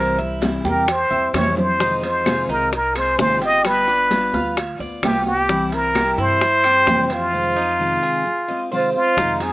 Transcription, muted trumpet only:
Already playing: A#4
0.67 A#4
0.91 C5
1.36 C#5
1.59 C5
2.05 C5
2.51 A#4
2.75 A#4
2.98 C5
3.20 C5
3.45 D#5
3.66 B4
5.05 G4
5.27 G4
5.74 A#4
6.21 C5
7.13 F4
8.73 F4
8.95 F4
9.42 G#4

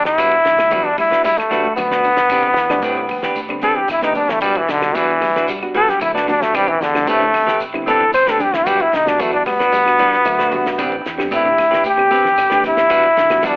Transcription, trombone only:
0.06 E4
0.85 D4
0.99 E4
1.25 E4
1.38 A3
1.76 B3
3.63 A4
3.78 G4
3.91 E4
4.03 D#4
4.17 D4
4.31 A3
4.42 G3
4.57 E3
4.71 D3
4.95 E3
5.77 A4
5.89 G4
6.02 E4
6.14 D4
6.29 D4
6.42 A3
6.55 G3
6.68 E3
6.82 D3
7.08 A3
7.88 A4
8.14 C5
8.30 A4
8.42 G4
8.55 E4
8.67 G4
8.81 E4
8.95 D#4
9.08 D4
9.21 A3
9.34 D4
9.47 B3
11.34 E4
11.86 G4
12.67 E4
13.47 D4

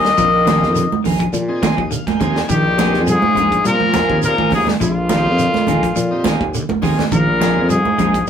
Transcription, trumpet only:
Already playing: D#5
2.50 G4
3.10 G#4
3.67 A#4
4.24 A#4
4.54 G#4
4.83 F4
7.13 A#4
7.70 G#4

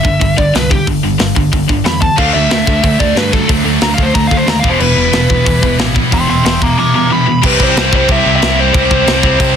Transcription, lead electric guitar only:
Already playing: E5
0.38 D5
0.55 B4
0.70 G4
1.86 B5
2.02 A5
2.17 F5
2.33 E5
3.00 D5
3.17 B4
3.33 A4
3.83 A#5
3.94 F5
4.03 C5
4.14 A#5
4.27 F5
4.37 C5
4.49 A#5
4.59 F5
4.69 C5
4.81 B4
6.13 G5 C6
6.30 G5 C6
6.45 G5 C6
6.63 A#5 D6
6.79 A#5 D6
6.95 A#5 D6
7.12 B5
7.46 B4
7.63 C5
7.96 C5
8.11 E5
8.36 E5
8.60 C5

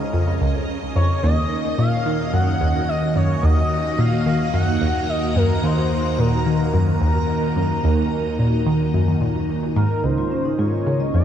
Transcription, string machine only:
Already playing: C#3 C#4 A#4 D#5 F5
1.23 D#3
1.41 A#3
2.04 F#4
2.29 A#5
10.04 C#3
10.37 C#4 G#4

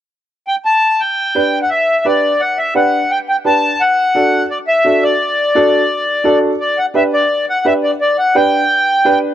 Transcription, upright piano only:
1.35 D4 G4 B4
2.05 D4 G4 B4
2.75 D4 G4 B4
3.45 D4 G4 B4
4.15 D4 F#4 A4
4.84 D4 F#4 A4
5.55 D4 F#4 A4
6.24 D4 F#4 A4
6.94 D4 G4 B4
7.65 D4 G4 B4
8.35 D4 G4 B4
9.05 D4 G4 B4

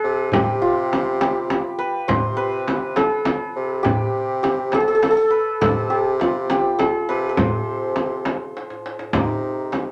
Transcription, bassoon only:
0.04 C3
0.33 C3
2.08 C3
3.56 C3
3.85 C3
5.62 C3
7.09 C3
7.38 C3
9.14 C3

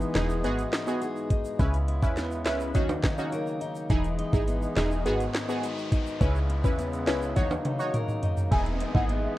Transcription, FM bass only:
0.15 E1
0.44 G#1
1.59 C#2
2.03 E2
2.46 C#2
2.75 D#2
3.90 E1
4.33 G#1
4.77 E1
5.06 G#1
6.21 C#2
6.64 E2
7.07 C#2
7.37 D#2
8.52 E1
8.95 G#1

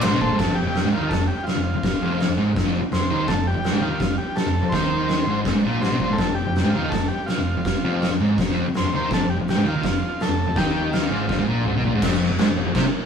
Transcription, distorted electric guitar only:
0.04 G#2
0.14 B2
0.22 A#2
0.32 G#2
0.41 F2
0.51 F2
0.67 F2
0.84 G#2
0.94 D#3
1.01 D#3
1.12 F2
1.55 F2
1.75 F2
2.02 F2
2.28 F2
2.37 G#2
2.55 F2
2.63 F2
2.82 muted distorted electric guitar stroke
2.92 F2
3.01 F2
3.10 D#3
3.28 F2
3.35 F2
3.55 F2
3.72 G#2
3.81 D#3
3.90 D#3
4.00 F2
4.47 F2
4.63 F2
4.73 D#3
5.26 G#2
5.45 F2
5.55 G#2
5.64 A#2
5.81 G#2
5.91 B2
6.00 A#2
6.10 G#2
6.18 F2
6.28 F2
6.47 F2
6.64 G#2
6.75 D#3
6.84 D#3
6.94 F2
7.38 F2
7.57 F2
7.84 F2
8.11 F2
8.21 G#2
8.39 F2
8.50 F2
8.68 muted distorted electric guitar stroke
8.77 F2
8.86 F2
8.95 D#3
9.12 F2
9.23 F2
9.40 F2
9.56 G#2
9.64 D#3
9.75 D#3
9.84 F2
10.29 F2
10.47 F2
10.56 D#3
11.10 G#2
11.28 F2
11.38 G#2
11.48 A#2
11.66 G#2
11.76 B2
11.85 A#2
11.95 G#2
12.03 F2
12.31 F2
12.39 G#2
12.50 F2
12.57 F2
12.67 F2
12.75 C3
12.85 muted distorted electric guitar stroke

